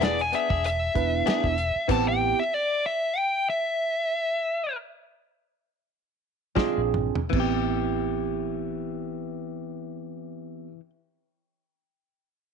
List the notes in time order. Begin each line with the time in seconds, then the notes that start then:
Already playing: E1 B3 D4 E4 G#4
0.01 B3 D4 G#4 D5, snare, closed hi-hat
0.19 G#5, closed hi-hat
0.32 B3 D4 G#4 E5, closed hi-hat
0.50 E1 D4 G#4, kick
0.64 E5, closed hi-hat
0.94 E1 B3 D4 E4 B4, kick, closed hi-hat
1.26 B3 D4 G#4, snare, closed hi-hat
1.44 E1, kick
1.58 closed hi-hat
1.76 muted fingered electric bass stroke
1.88 A1 E3 B3 C4 E4 G4 A5, kick, closed hi-hat, crash
2.08 G5
2.39 E5
2.54 D5
2.86 E5
3.17 G5
3.50 E5
6.55 F3 G#3 C4 D4 F4 G#4, muted fingered electric bass stroke, kick, snare
6.78 A#1
6.94 mid tom
7.15 muted fingered electric bass stroke, floor tom
7.30 A1 E3 B3 C4, kick, crash
7.34 E4 G4
7.40 G4